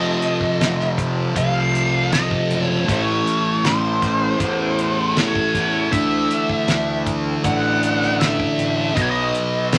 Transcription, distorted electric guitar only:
0.00 1.31 F2 medium
0.00 1.32 C3 medium
0.00 1.33 F3 medium
1.34 2.84 F2 medium
1.34 2.84 C3 medium
1.34 2.85 F3 medium
2.85 4.36 A2 medium
2.85 4.39 E3 medium
2.85 4.41 A3 medium
4.38 5.89 A2 medium
4.38 5.89 E3 medium
4.38 5.90 A3 medium
5.91 7.41 D3 medium
5.91 7.42 A3 medium
5.91 7.42 D4 medium
7.43 8.93 D3 medium
7.43 8.94 A3 medium
7.43 8.95 D4 medium
8.93 9.78 B2 medium
8.93 9.78 F#3 medium
8.93 9.78 B3 medium

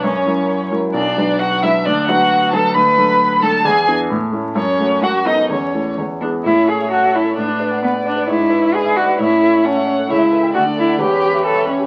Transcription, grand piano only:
0.04 0.26 F#2 medium
0.26 0.68 F#3 medium
0.26 0.68 E4 medium
0.26 0.68 A#4 medium
0.71 0.92 F#3 medium
0.71 0.92 E4 medium
0.71 0.93 A#4 medium
0.94 1.16 B1 medium
1.17 1.59 F#3 medium
1.17 1.59 D4 medium
1.17 1.59 B4 medium
1.63 1.84 F#3 medium
1.63 1.84 D4 medium
1.63 1.84 B4 medium
1.85 2.07 D2 medium
2.08 2.49 F#3 medium
2.08 2.49 D4 medium
2.08 2.49 B4 medium
2.53 2.73 F#3 medium
2.53 2.73 D4 medium
2.53 2.73 B4 medium
2.75 2.97 D2 medium
2.97 3.39 F#3 medium
2.97 3.39 D4 medium
2.97 3.39 A4 medium
3.42 3.63 F#3 medium
3.42 3.63 D4 medium
3.42 3.64 A4 medium
3.65 3.87 E2 medium
3.88 4.08 B3 medium
3.88 4.09 D4 medium
3.88 4.09 E4 medium
4.10 4.32 A2 medium
4.32 4.53 A3 medium
4.32 4.54 C#4 medium
4.32 4.54 E4 medium
4.55 4.78 F#2 medium
4.79 5.00 A3 medium
4.79 5.00 C#4 medium
4.79 5.00 F#4 medium
5.02 5.25 F#2 medium
5.26 5.47 B3 medium
5.26 5.47 D#4 medium
5.26 5.48 A4 medium
5.50 5.73 E2 medium
5.74 5.95 A3 soft
5.74 5.95 E4 soft
5.74 5.96 A4 medium
5.98 6.21 E2 medium
6.21 6.42 B3 soft
6.21 6.42 E4 soft
6.21 6.43 G#4 soft
6.45 7.34 A2 medium
6.56 6.75 C#4 soft
6.67 6.86 A4 soft
6.80 6.98 E5 medium
6.91 7.09 A5 medium
7.02 7.21 E5 medium
7.14 7.32 C#5 soft
7.24 7.36 A4 soft
7.37 8.25 A2 medium
7.48 7.66 D4 soft
7.60 7.78 B4 medium
7.71 7.89 F#5 medium
7.83 8.01 B5 medium
7.94 8.12 F#5 medium
8.05 8.23 D5 medium
8.16 8.28 B4 medium
8.27 9.16 G#2 medium
8.39 8.57 D4 soft
8.50 8.69 B4 soft
8.62 8.80 E5 medium
8.73 8.91 B5 medium
8.84 9.03 E5 medium
8.95 9.14 D5 medium
9.07 9.19 B4 medium
9.19 10.07 A2 medium
9.30 9.48 C#4 medium
9.41 9.60 A4 medium
9.53 9.71 E5 medium
9.64 9.82 A5 medium
9.76 9.94 E5 medium
9.87 10.05 C#5 medium
9.98 10.10 A4 medium
10.09 10.53 C#2 medium
10.21 10.39 E4 soft
10.32 10.50 A4 medium
10.43 10.54 G5 medium
10.54 10.98 D2 medium
10.66 10.84 D4 medium
10.76 10.95 A4 medium
10.88 10.99 F#5 medium
10.98 11.87 E2 medium
11.10 11.29 C#4 soft
11.22 11.40 G4 medium
11.33 11.52 E5 medium
11.45 11.63 G5 medium
11.57 11.75 E5 medium
11.68 11.86 C#5 medium
11.79 11.87 G4 soft

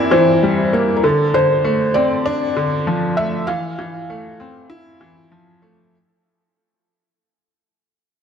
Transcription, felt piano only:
0.00 0.12 D5 medium
0.11 0.69 C5 loud
0.96 1.04 A#4 medium
1.03 1.35 A4 medium
1.34 1.97 C5 loud
1.94 3.21 D5 loud
3.17 3.49 E5 loud
3.47 5.27 F5 loud

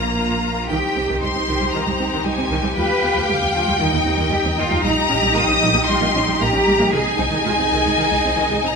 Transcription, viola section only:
0.00 0.69 A#3 medium
0.70 0.75 D#3 medium
0.70 2.72 D#4 medium
0.96 1.01 C4 medium
1.08 1.14 D#3 medium
1.22 1.27 G3 medium
1.35 1.40 C4 medium
1.48 1.53 D#3 medium
1.61 1.66 G3 medium
1.74 1.79 D#3 medium
1.86 1.91 G3 medium
1.99 2.04 C4 medium
2.13 2.18 D#3 medium
2.24 2.29 G3 medium
2.38 2.43 C4 medium
2.51 2.56 D#3 loud
2.63 2.68 G3 medium
2.77 2.82 F3 medium
2.77 3.78 G4 medium
3.03 3.08 B3 medium
3.16 3.21 F3 medium
3.29 3.34 G3 medium
3.41 3.46 B3 medium
3.54 3.59 F3 medium
3.67 3.72 G3 medium
3.79 3.85 D#3 medium
3.79 6.90 D#4 medium
3.93 3.98 G3 medium
4.05 4.11 C4 medium
4.18 4.24 D#3 medium
4.31 4.36 G3 medium
4.44 4.49 C4 medium
4.57 4.63 D#3 medium
4.70 4.75 G3 medium
4.83 4.88 G3 loud
5.09 5.15 C#4 medium
5.22 5.27 G3 medium
5.34 5.40 A#3 medium
5.48 5.53 C#4 medium
5.62 5.67 G3 loud
5.74 5.80 A#3 medium
5.88 5.93 G3 medium
6.01 6.07 A#3 medium
6.14 6.20 C#4 medium
6.27 6.33 G3 medium
6.40 6.46 A#3 medium
6.52 6.58 C#4 medium
6.66 6.71 G3 loud
6.79 6.84 A#3 medium
6.91 6.97 D#3 medium
6.91 8.76 D#4 medium
7.18 7.23 C4 medium
7.31 7.36 D#3 medium
7.45 7.50 G#3 medium
7.58 7.64 C4 medium
7.72 7.77 D#3 medium
7.85 7.90 G#3 medium
7.97 8.03 D#3 medium
8.10 8.16 G#3 medium
8.24 8.30 C4 medium
8.37 8.42 D#3 loud
8.50 8.56 G#3 medium
8.63 8.68 C4 medium

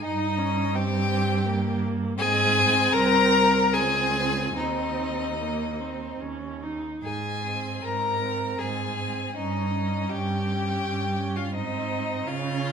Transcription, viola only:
0.03 0.40 D#4 medium
0.39 0.77 C#4 medium
0.75 1.47 C4 medium
1.46 2.18 A#3 medium
2.19 3.70 C4 medium
3.74 4.55 C4 medium
4.56 5.29 C4 medium
5.39 5.82 A#3 medium
5.80 6.23 C4 medium
6.21 6.64 C#4 medium
6.63 7.04 D#4 medium
7.45 8.20 C4 medium
8.22 8.96 C4 soft
8.98 9.35 C4 soft
9.36 9.72 C#4 soft
9.73 10.45 C#4 medium
10.46 11.16 C#4 medium
11.17 11.53 C#4 medium
11.54 12.29 C4 medium
12.27 12.72 C#4 medium

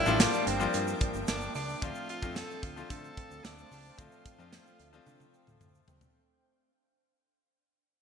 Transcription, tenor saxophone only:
0.00 0.22 E4 loud
0.20 0.49 D4 medium
0.47 1.01 C4 medium
1.28 1.53 D4 medium
1.56 1.84 D4 medium
1.83 2.09 F4 loud
2.10 2.38 F4 loud
2.36 2.65 A4 loud
2.63 2.91 F4 medium
2.90 3.46 A4 loud
3.44 4.00 D4 loud
3.99 5.61 F4 loud

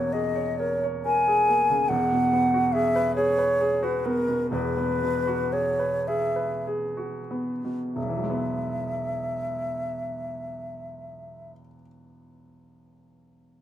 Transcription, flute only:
0.00 0.14 C#5 medium
0.13 0.60 D#5 loud
0.59 0.84 C#5 loud
1.05 1.90 G#5 loud
1.88 2.74 F#5 loud
2.73 3.15 E5 loud
3.16 3.85 C#5 loud
3.83 4.07 B4 medium
4.05 4.50 A#4 loud
4.51 5.54 B4 loud
5.53 6.09 C#5 loud
6.08 6.67 E5 loud
7.95 11.52 E5 medium

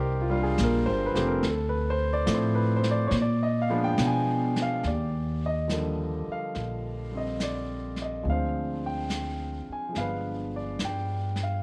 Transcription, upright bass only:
0.00 0.57 C2 medium
0.59 0.87 A#1 loud
0.87 1.14 G1 medium
1.15 1.41 F1 medium
1.43 2.25 D2 medium
2.28 3.10 A2 medium
3.11 3.95 A#2 medium
3.98 4.81 B2 medium
4.84 6.23 D#2 medium
6.27 muted upright bass stroke soft
6.56 8.21 A#1 medium
8.25 9.63 D2 medium
9.69 muted upright bass stroke soft
9.96 10.76 G1 medium
10.82 11.61 G2 medium

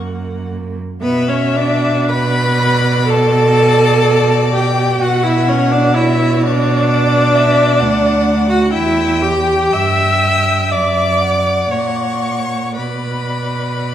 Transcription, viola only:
0.00 0.78 A#3 medium
1.02 1.30 B3 medium
1.28 1.57 C#4 medium
1.56 2.11 D4 medium
2.09 3.08 B4 loud
3.08 4.51 A4 loud
4.54 5.03 G4 medium
5.01 5.25 F#4 medium
5.23 5.50 E4 medium
5.48 5.73 C#4 medium
5.71 5.96 D4 loud
5.95 6.44 E4 medium
6.43 8.49 D4 loud
8.49 8.72 F#4 medium
8.73 9.24 E4 medium
9.22 9.75 G4 medium
9.73 10.73 E5 loud
10.72 11.73 D5 medium
11.71 11.80 C#5 medium
11.79 11.88 D5 medium
11.87 11.97 C#5 medium
11.96 12.05 D5 medium
12.03 12.14 C#5 medium
12.13 12.24 D5 medium
12.22 12.33 C#5 medium
12.31 12.40 D5 soft
12.39 12.76 C#5 medium
12.77 13.95 B4 medium

